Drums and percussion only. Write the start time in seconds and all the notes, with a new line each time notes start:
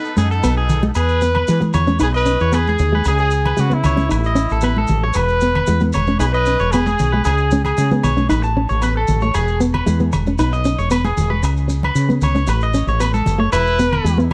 0.05 maracas
0.17 high conga, maracas
0.32 maracas
0.43 low agogo, maracas
0.69 low conga, maracas
0.82 high conga, maracas
0.95 low agogo, maracas
1.09 maracas
1.21 maracas
1.35 low conga, low agogo
1.48 maracas
1.61 high conga, maracas
1.74 low conga, low agogo, maracas
1.87 high conga, maracas
1.99 low agogo, maracas
2.14 maracas
2.26 maracas
2.40 maracas
2.52 low agogo, maracas
2.67 high conga, maracas
2.79 low conga, maracas
3.05 low agogo, maracas
3.18 maracas
3.31 maracas
3.45 low conga, low agogo
3.57 maracas
3.71 high conga, maracas
3.84 low conga, low agogo, maracas
3.97 high conga, maracas
4.11 low agogo, maracas
4.24 maracas
4.36 maracas
4.49 maracas
4.61 low agogo, maracas
4.76 high conga
4.87 low conga, maracas
5.13 low agogo, maracas
5.28 maracas
5.41 maracas
5.55 low conga, low agogo
5.67 maracas
5.80 high conga, maracas
5.93 low conga, low agogo, maracas
6.07 high conga, maracas
6.20 low agogo, maracas
6.34 maracas
6.46 maracas
6.59 maracas
6.72 low agogo, maracas
6.86 high conga, maracas
6.99 low conga, maracas
7.25 low agogo, maracas
7.38 maracas
7.51 high conga, maracas
7.65 low conga, low agogo, maracas
7.77 maracas
7.91 high conga, maracas
8.03 low conga, low agogo, maracas
8.17 high conga, maracas
8.30 low agogo, maracas
8.43 maracas
8.69 maracas
8.82 low agogo, maracas
9.07 low conga, maracas
9.21 maracas
9.34 low agogo, maracas
9.48 maracas
9.61 maracas
9.74 low conga, low agogo
9.87 maracas
10.00 high conga, maracas
10.12 low conga, low agogo, maracas
10.27 high conga, maracas
10.38 low agogo, maracas
10.53 maracas
10.65 maracas
10.79 maracas
10.91 low agogo, maracas
11.05 high conga, maracas
11.17 low conga, maracas
11.43 low agogo, maracas
11.57 maracas
11.69 maracas
11.83 low conga, low agogo
11.95 maracas
12.10 high conga, maracas
12.21 low conga, low agogo, maracas
12.35 high conga, maracas
12.47 low agogo, maracas
12.61 maracas
12.74 maracas
12.88 maracas
13.00 low agogo, maracas
13.14 high conga, maracas
13.26 low conga, maracas
13.53 low agogo, maracas
13.67 maracas
13.79 maracas
13.92 low conga, low agogo
14.06 maracas
14.17 high conga, maracas